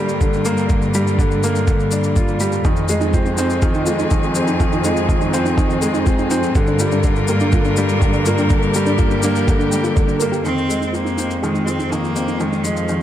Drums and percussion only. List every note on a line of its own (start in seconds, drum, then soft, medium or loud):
0.09 shaker soft
0.21 kick medium
0.21 shaker soft
0.33 shaker soft
0.45 shaker medium
0.57 shaker soft
0.69 kick medium
0.69 shaker soft
0.82 shaker soft
0.94 shaker medium
1.07 shaker soft
1.19 kick medium
1.19 shaker soft
1.31 shaker soft
1.43 shaker medium
1.55 shaker soft
1.67 kick loud
1.67 shaker soft
1.80 shaker soft
1.91 shaker medium
2.04 shaker soft
2.16 kick medium
2.16 shaker soft
2.28 shaker soft
2.40 shaker medium
2.52 shaker soft
2.64 kick medium
2.64 shaker soft
2.76 shaker soft
2.88 shaker medium
3.01 shaker soft
3.13 kick medium
3.13 shaker soft
3.26 shaker soft
3.38 shaker medium
3.50 shaker soft
3.62 kick loud
3.62 shaker soft
3.74 shaker soft
3.86 shaker medium
3.99 shaker soft
4.11 kick medium
4.11 shaker soft
4.23 shaker soft
4.35 shaker medium
4.47 shaker soft
4.60 kick medium
4.60 shaker soft
4.72 shaker soft
4.84 shaker medium
4.97 shaker soft
5.09 kick medium
5.09 shaker soft
5.21 shaker soft
5.34 shaker medium
5.46 shaker soft
5.58 kick medium
5.58 shaker soft
5.70 shaker soft
5.82 shaker medium
5.94 shaker soft
6.06 kick medium
6.06 shaker soft
6.18 shaker soft
6.30 shaker medium
6.43 shaker soft
6.55 kick medium
6.55 shaker soft
6.67 shaker soft
6.79 shaker medium
6.92 shaker soft
7.03 kick medium
7.03 shaker soft
7.16 shaker soft
7.28 shaker medium
7.40 shaker soft
7.52 kick loud
7.52 shaker soft
7.65 shaker soft
7.76 shaker medium
7.89 shaker soft
8.01 kick medium
8.01 shaker soft
8.13 shaker soft
8.25 shaker medium
8.38 shaker soft
8.50 kick medium
8.50 shaker soft
8.62 shaker soft
8.74 shaker medium
8.86 shaker soft
8.98 kick medium
8.98 shaker soft
9.11 shaker soft
9.23 shaker medium
9.36 shaker soft
9.48 kick loud
9.48 shaker soft
9.60 shaker soft
9.72 shaker medium
9.84 shaker soft
9.96 kick loud
9.96 shaker soft
10.09 shaker soft
10.20 shaker medium
10.33 shaker soft
10.45 shaker soft
10.58 shaker soft
10.70 shaker medium
10.82 shaker soft
10.94 shaker soft
11.07 shaker soft
11.18 shaker medium
11.31 shaker soft
11.43 shaker soft
11.55 shaker soft
11.68 shaker medium
11.80 shaker soft
11.92 shaker soft
12.04 shaker soft
12.16 shaker soft
12.28 shaker soft
12.40 shaker soft
12.53 shaker soft
12.64 shaker medium
12.77 shaker soft
12.88 shaker soft